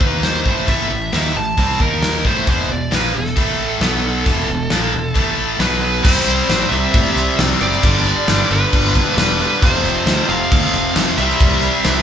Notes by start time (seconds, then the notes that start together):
Already playing: C5
0.00 D#2 D#3 A#3 D#4, kick
0.06 B4
0.23 C5, snare, open hi-hat
0.45 A1 A2 E3 A3, kick
0.67 A1 A2 E3 A3 E5, kick, open hi-hat
0.90 A1 A2 E3
1.12 D#2 D#3 A#3 D#4 E5, snare, open hi-hat
1.35 A1 A2 E3 A5
1.58 C2 C3 G3 C4, kick, open hi-hat
1.80 D#2 D#3 A#3 D#4 A#4, kick
2.02 snare, open hi-hat
2.25 A1 A2 E3 A3 C5, kick
2.47 E1 E2 B2 E3 C5, kick, open hi-hat
2.69 E1 E2 B2 D5
2.91 A#1 A#2 F3 A#3 B4, snare, open hi-hat
3.14 E1 E2 B2 A4
3.25 snare
3.36 A1 A2 E3 A3, kick, open hi-hat
3.81 B1 B2 F#3 B3, snare, open hi-hat
4.26 E1 E2 B2 E3, kick, open hi-hat
4.49 E1 E2 B2
4.70 A#1 A#2 F3 A#3, snare, open hi-hat
4.94 E1 E2 B2
5.15 A1 A2 E3 A3, kick, open hi-hat
5.60 B1 B2 F#3 B3 B4, snare, open hi-hat
5.82 B4
6.04 C2 C3 G3 C4 E4 G4 C5 D5, kick, crash
6.08 C4
6.27 C2, crash
6.49 A1, snare, crash
6.69 C2 E5, crash
6.92 A2 E5, kick, crash
7.16 C2, crash
7.39 C2, snare, crash
7.50 snare
7.61 F#1 G3 C4 D5, crash
7.65 C3
7.72 snare
7.83 G1 G2 D3 G3 B3 D4 A4, kick, crash
8.06 crash
8.28 G1, snare, crash
8.51 G1 B4, crash
8.73 G1, kick, crash
8.95 kick, crash
9.17 E1 B4, snare, crash
9.40 G2 D3 G3 B4, crash
9.62 F1 F2 C3 F3 A3 C4 G4 C5, kick, crash
9.83 F1, crash
10.06 D2, snare, crash
10.29 F1 F5, crash
10.52 D2 F5, kick, crash
10.74 F1, crash
10.96 F1, snare, crash
11.17 C2 C3 G3 E4 G4 D5 E5, crash
11.22 C4
11.30 snare
11.40 C2, kick, crash
11.63 crash
11.85 C2, snare, crash